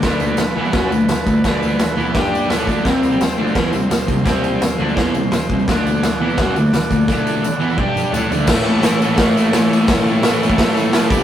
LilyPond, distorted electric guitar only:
\new Staff \with { instrumentName = "Distorted electric guitar" } { \time 4/4 \key d \mixolydian \tempo 4 = 170 <d a d'>4 r8 <e b e'>8 <fis cis' fis'>8 <d a>8 r8 <d a>8 | <d a d'>4 r8 <e b e'>8 <g d' g'>4 <a e' a'>8 <d a d'>8 | <c g c'>4 r8 <d a d'>8 <e b e'>8 <c g>8 r8 <c g>8 | <c g c'>4 r8 <d a d'>8 <e b e'>8 <c g>8 r8 <c g>8 |
<d a d'>4 r8 <e b e'>8 <fis cis' fis'>8 <d a>8 r8 <d a>8 | <d a d'>4 r8 <e b e'>8 <g d' g'>4 <a e' a'>8 <d a d'>8 | <a, e a>8 <e a>8 <a, e a>8 <a, e a>8 <a, e a>8 <e a>8 <a, e a>8 <e a>8 | <a, e a>8 <e a>8 <a, e a>8 <a, e a>8 <a, e a>8 <e a>8 <a, e a>8 <g, d g>8 | }